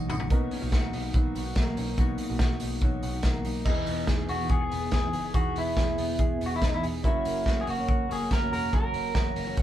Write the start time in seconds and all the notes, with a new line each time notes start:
Already playing: B2 F#3 D#4 F#4
0.09 A#1 F#3 A#3 D#4 F#4, floor tom, tambourine
0.20 floor tom
0.30 B1 B2 F#3 A#3 B3 D#4 F#4 A#4, kick, closed hi-hat
0.51 C#4, open hi-hat
0.62 B1 B2 F#3 A#3 D#4 F#4
0.72 B1 F#4, kick, snare, closed hi-hat
0.82 A#3 D#4 F#4
0.93 B1 D#4, open hi-hat
1.14 B1 B2 F#3 A#3 D#4 F#4, kick, closed hi-hat
1.35 B1 F#4, open hi-hat
1.45 A#3 D#4 F#4
1.55 B1 A#3, kick, snare, closed hi-hat
1.76 B1 F#3 A#3 C#4 D#4 F#4, open hi-hat
1.87 D#4
1.97 B1 B2 F#3 A#3 D#4 F#4, kick, closed hi-hat
2.18 D#4, open hi-hat
2.29 B1 B2 F#3 A#3 D#4 F#4
2.39 B1 F#4, kick, snare, closed hi-hat
2.49 A#3 D#4 F#4
2.60 B1 D#4, open hi-hat
2.81 B1 B2 F#3 A#3 D#4 F#4, kick, closed hi-hat
3.03 B1 F#4, open hi-hat
3.12 A#3 D#4 F#4
3.23 B1 A#3, kick, snare, closed hi-hat
3.45 B1 F#3 A#3 D#4 F#4, open hi-hat
3.65 E1 E3 B3 D#4 G#4 D#5, kick, crash
3.86 E1 B3, open hi-hat
4.06 E1 E3 B3 D#4 G#4, kick, snare, closed hi-hat
4.28 E1 B3 F#4, open hi-hat
4.38 E3 B3 D#4 G#4
4.49 E1 F#4 G#4, kick, closed hi-hat
4.61 G#4
4.71 E1 B3, open hi-hat
4.80 B3 D#4 G#4
4.91 E1 G#4, kick, snare, closed hi-hat
5.01 E3 B3 D#4 G#4
5.13 F#1 G#4, open hi-hat
5.34 E1 E3 B3 D#4 F#4 G#4, kick, closed hi-hat
5.55 E1 B3 E4, open hi-hat
5.76 E1 E3 B3 G#4, kick, snare, closed hi-hat
5.98 E1 B3, open hi-hat
6.08 E3 B3 G#4
6.19 E1 G#4, kick, closed hi-hat
6.41 E1 B3, open hi-hat
6.46 F#4
6.51 B3 D#4 G#4
6.56 E4
6.61 E1 D#4, kick, snare, closed hi-hat
6.72 E3 B3 D#4 E4 G#4
6.83 E1 G#4, open hi-hat
7.03 F#1 F#2 C#3 F#3 A#3 C#4 E4 F#4 A#4, kick, closed hi-hat
7.25 F#1 A#3, open hi-hat
7.46 F#1 F#2 C#3 F#3 A#3 C#4 F#4, kick, snare, closed hi-hat
7.61 G#4
7.67 F#1 A#3 F#4, open hi-hat
7.78 F#2 C#3 F#3 A#3 C#4 F#4
7.87 F#1 F#4, kick, closed hi-hat
8.09 F#1 A#3 G#4, open hi-hat
8.20 F#3 A#3 C#4 F#4
8.31 F#1 C#4 A#4, kick, snare, closed hi-hat
8.41 F#2 C#3 F#3 A#3 C#4 F#4
8.52 E1 F#4 A#4, open hi-hat
8.72 F#1 F#2 C#3 F#3 A#3 C#4 F#4 A#4, kick, closed hi-hat
8.93 F#1 A#3, open hi-hat
9.15 F#1 F#2 C#3 F#3 A#3 C#4 F#4, kick, snare, closed hi-hat
9.36 F#1 A#3, open hi-hat
9.46 F#2 C#3 F#3 A#3 C#4 F#4
9.57 F#1 F#4, kick, closed hi-hat